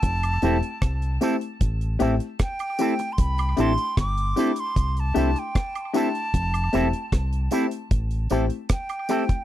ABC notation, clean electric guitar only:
X:1
M:4/4
L:1/8
Q:1/4=76
K:Flyd
V:1 name="Clean electric guitar"
z [CEA] z [CEA] z [CEA] z [CEA] | z [CEA] z [CEA] z [CEA] z [CEA] | z [CEA] z [CEA] z [CEA] z [CEA] |]